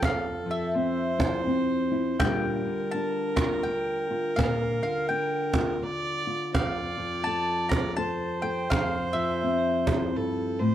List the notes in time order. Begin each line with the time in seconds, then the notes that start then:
Already playing: F3 A4
0.02 F2 F5, cajon bass, cajon slap
0.25 cajon slap
0.46 F3
0.51 E5
0.62 cajon slap
0.74 C4 C5
1.19 E4, cajon bass, cajon slap
1.34 cajon slap
1.47 C4
1.92 E4, cajon slap
2.14 C5
2.19 A#2 D3 G3 D4 F4 A#4 G5, cajon bass, cajon slap
2.43 cajon slap
2.65 D3
2.80 cajon slap
2.91 D4 A5
3.36 F4 A#5, cajon bass, cajon slap
3.52 cajon slap
3.63 D4 G5
4.10 F4, cajon slap
4.36 A#2 F5, cajon bass, cajon slap
4.61 cajon slap
4.82 D3 F5
4.97 cajon slap
5.09 D4 G5
5.54 F4, cajon bass, cajon slap
5.81 D4 D5, cajon slap
6.27 F4
6.54 F2 D5 F5, cajon bass, cajon slap
6.78 cajon slap
6.98 F3
7.14 cajon slap
7.24 A4 A5
7.69 A#5, cajon bass, cajon slap
7.86 cajon slap
7.96 A4 C5 A5
8.42 A4 G5, cajon slap
8.70 F2 F5, cajon bass, cajon slap
8.94 cajon slap
9.13 F3 E5
9.30 cajon slap
9.43 C4
9.87 E4, cajon bass, cajon slap
10.02 cajon slap
10.16 G2 A4
10.59 A2 C5, cajon slap